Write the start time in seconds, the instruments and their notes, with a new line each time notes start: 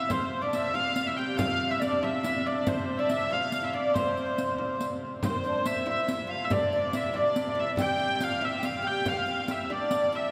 Already playing: oud E4, recorder E5, hurdy-gurdy E5
0.09 viola da gamba C3, oud C4, recorder C5, hurdy-gurdy C5, riq, frame drum
0.41 oud D4, hurdy-gurdy D5, recorder D5
0.53 oud E4, hurdy-gurdy E5, riq, frame drum
0.73 oud F4, recorder F5, hurdy-gurdy F5, frame drum
0.96 riq
1.05 oud E4, recorder E5, hurdy-gurdy E5
1.17 oud G4, hurdy-gurdy G5
1.37 oud F4, hurdy-gurdy F5, recorder F5, riq, frame drum
1.69 oud E4, recorder E5, hurdy-gurdy E5
1.80 oud D4, recorder D5, hurdy-gurdy D5, riq, frame drum
2.02 oud E4, recorder E5, hurdy-gurdy E5, frame drum
2.23 oud E4, recorder E5, riq
2.46 oud D4, hurdy-gurdy D5
2.66 oud C4, recorder C5, hurdy-gurdy C5, riq, frame drum
2.97 oud D4, recorder D5, hurdy-gurdy D5 E5
3.09 oud E4, hurdy-gurdy E5, recorder E5, riq, frame drum
3.31 oud F4, hurdy-gurdy F5, recorder F5, frame drum
3.52 riq
3.62 oud E4, hurdy-gurdy E5
3.73 oud D4, hurdy-gurdy D5
3.94 oud C4, hurdy-gurdy C5, recorder C5, riq, frame drum
4.17 riq
4.38 riq
4.58 frame drum
4.81 riq, frame drum
5.01 frame drum
5.23 viola da gamba C3, oud C4, recorder C5, hurdy-gurdy C5, riq, frame drum
5.30 recorder A#4
5.37 recorder C5
5.44 oud D4, riq
5.66 oud E4, hurdy-gurdy E5, riq, frame drum
5.86 oud E4, hurdy-gurdy E5, recorder F5, frame drum
5.91 recorder E5
6.07 oud E4, hurdy-gurdy E5, riq
6.27 oud F4, recorder F5, hurdy-gurdy F5
6.44 hurdy-gurdy E5
6.50 oud D4, recorder D5, hurdy-gurdy D5, riq, frame drum
6.72 recorder D5, riq, frame drum
6.93 oud E4, recorder E5, hurdy-gurdy E5, riq, frame drum
7.13 oud D4, recorder D5, hurdy-gurdy D5, frame drum
7.36 riq
7.55 oud E4
7.59 hurdy-gurdy E5
7.76 oud G4, recorder G5, riq, frame drum
7.81 hurdy-gurdy G5
7.97 oud G4, riq
8.20 oud F4, hurdy-gurdy F5, recorder G5, riq, frame drum
8.25 recorder F5
8.41 oud E4, recorder E5, hurdy-gurdy E5, frame drum
8.59 oud F4, recorder F5 G5
8.63 hurdy-gurdy F5, riq
8.82 oud G4, recorder G5
8.87 hurdy-gurdy G5
9.05 oud F4, recorder F5, hurdy-gurdy F5, riq, frame drum
9.13 recorder G5
9.18 recorder F5
9.26 oud F4, riq
9.48 oud E4, hurdy-gurdy E5, riq
9.70 oud D4, recorder D5, hurdy-gurdy D5, frame drum
9.91 oud D4, riq, frame drum
10.12 oud E4, hurdy-gurdy E5, riq, frame drum